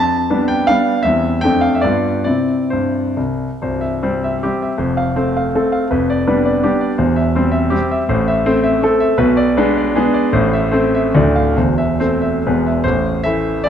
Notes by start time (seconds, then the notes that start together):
Already playing: F2 A5
0.30 G3 B3 D4
0.48 G5
0.67 G3 B3 D4 F5
1.03 E2 G3 C4 E4 E5
1.41 F2 A3 C4 D4 G5
1.61 F5
1.75 E5
1.81 G2 G3 B3 F4 D5
2.24 C3 C4 E4 D5
2.70 G2 C5
3.17 C2
3.62 C1 C2 C5
3.81 E5
4.03 G3 C4 C5
4.24 E5
4.43 G3 C4 G4
4.62 E5
4.78 F1 F2 C5
4.97 F5
5.16 A3 C4 C5
5.37 F5
5.55 A3 C4 A4
5.72 F5
5.91 F1 F2 B4
6.10 D5
6.27 G3 B3 D4 B4
6.45 D5
6.63 G3 B3 D4 G4
6.81 D5
6.98 E1 E2 C5
7.16 E5
7.35 G3 C4 C5
7.52 E5
7.70 G3 C4 G4
7.91 E5
8.09 A1 A2 C5
8.28 E5
8.46 A3 C4 C5
8.64 E5
8.82 A3 C4 A4
9.00 E5
9.18 B1 B2 B4
9.37 D5
9.57 G#3 B3 D4 B4
9.77 D5
9.95 G#3 B3 D4 G#4
10.14 D5
10.33 A1 A2 C5
10.53 E5
10.71 A3 C4 C5
10.95 E5
11.15 D1 D2 A3 D4 D5
11.36 F5
11.56 E1 E2 C5
11.78 E5
12.00 A3 C4 C5
12.22 E5
12.47 E1 E2 G#3 B3 B4
12.66 E5
12.84 A1 A2 C5
13.24 E3 A3 E4 E5
13.64 E3 D5